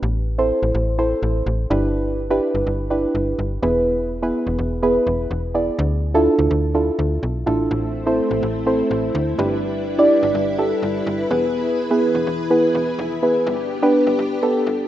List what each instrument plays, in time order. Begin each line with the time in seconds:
0.03 fm bass A1
0.38 synth pluck C4 E4 A4 C5
0.63 fm bass A1
0.75 fm bass A1
0.98 synth pluck C4 E4 A4 C5
1.23 fm bass A1
1.46 fm bass A1
1.70 fm bass G1, synth pluck D4 E4 G4 B4
2.30 synth pluck D4 E4 G4 B4
2.55 fm bass G1
2.67 fm bass G1
2.90 synth pluck D4 E4 G4 B4
3.15 fm bass G1
3.39 fm bass G1
3.62 fm bass E1, synth pluck B3 E4 G#4 B4
4.22 synth pluck B3 E4 G#4 B4
4.47 fm bass E1
4.59 fm bass E1
4.83 synth pluck B3 E4 G#4 B4
5.07 fm bass E1
5.31 fm bass E1
5.54 synth pluck B3 E4 G#4 D5
5.79 fm bass D2
6.14 synth pluck D4 E4 F4 A4
6.39 fm bass D2
6.51 fm bass D2
6.74 synth pluck D4 E4 F4 A4
6.99 fm bass D2
7.23 fm bass B1
7.46 fm bass A1, synth pluck D4 E4 F4 A4
7.71 fm bass A1, string machine A3 C4 E4
8.06 synth pluck C4 E4 A4 C5
8.31 fm bass A1
8.43 fm bass A1
8.66 synth pluck C4 E4 A4 C5
8.91 fm bass A1
9.15 fm bass D2
9.38 fm bass G1, string machine G3 D4 B4, synth pluck D4 E4 G4 B4
9.98 synth pluck D4 E4 G4 D5
10.23 fm bass G1
10.35 fm bass G1
10.58 synth pluck D4 E4 G4 A4
10.83 fm bass G1
11.07 fm bass G1
11.30 fm bass E1, string machine E3 G#4, synth pluck B3 E4 G#4 B4
11.91 synth pluck B3 E4 G#4 B4
12.15 fm bass E1
12.27 fm bass E1
12.50 synth pluck B3 E4 G#4 B4
12.75 fm bass E1
12.99 fm bass F1
13.22 synth pluck B3 E4 G#4 B4
13.47 fm bass G1, string machine B3 D4 G4
13.82 synth pluck B3 D4 G4 B4
14.07 fm bass G1
14.19 fm bass G1
14.42 synth pluck B3 D4 G4 A4
14.67 fm bass G1